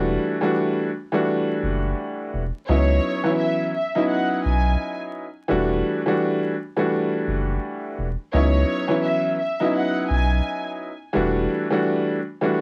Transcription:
Already playing: E1 E3 G3 A3 D4 F#4
0.41 E3 G3 A3 D4 F#4
1.12 E3 G3 A3 D4 F#4
1.63 F#1
2.34 E1
2.68 C#2 F#3 B3 C#4 D#4 E4 C#5
3.24 E3 F#3 B3 C#4 E4
3.39 E5
3.74 E5
3.95 F#3 B3 C#4 D#4 E4
4.09 F#5
4.44 B1 G#5
5.48 E1 E3 G3 A3 D4 F#4
6.06 E3 G3 A3 D4 F#4
6.76 E3 G3 A3 D4 F#4
7.28 F#1
7.99 E1
8.33 C#2 F#3 B3 C#4 D#4 E4 C#5
8.88 E3 F#3 B3 C#4 E4
9.03 E5
9.39 E5
9.60 F#3 B3 C#4 D#4 E4
9.75 F#5
10.10 B1 G#5
11.13 E1 E3 G3 A3 D4 F#4
11.70 E3 G3 A3 D4 F#4
12.41 E3 G3 A3 D4 F#4

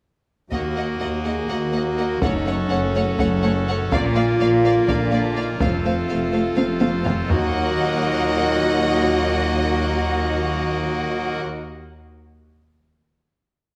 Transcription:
0.51 D#2 D#3 A#3 F#4 A#4 D#5 F#5, taiko
0.76 A#3 D#5 F#5
0.99 D#2 A#3 D#5 F#5
1.24 A#3 G#4 D#5 F#5
1.49 D#2 A#3 F#4 D#5 F#5
1.73 A#3 D#5 F#5
1.98 A#3 D#5 F#5
2.21 F#1 F#2 C#3 A3 C#4 D#4 A4 C#5 F#5, taiko
2.46 A3 C#5 F#5
2.69 F#1 F#2 A3 C#4 C#5 F#5
2.95 A3 C#5 F#5
3.19 F#1 F#2 A3 C#5 F#5, taiko
3.43 A3 C#5 F#5
3.69 A3 C#5 F#5
3.91 A#1 A#2 D3 A#3 F4 A#4 D5 F5, taiko
4.15 A#3 D5 F5
4.40 A#1 A#2 A#3 D5 F5
4.63 A#3 D5 F5
4.87 A#1 A#2 A#3 D5 F5, taiko
4.91 D4
5.12 A#3 D5 F5
5.35 A#3 D5 F5
5.39 D#4
5.60 F1 F2 C3 A3 C4 F4 A4 C5 F5, taiko
5.84 A3 C5 F5, taiko low
6.09 F1 F2 A3 C5 F5
6.32 A3 C5 F5
6.55 F1 F2 A3 C5 F5, taiko high
6.80 A3 C5 F5, taiko high
7.03 A3 C5 F5, taiko low
7.27 D#2 A#2 F#3 A#3 D#4 F#4 A#4 D#5 F#5, taiko low

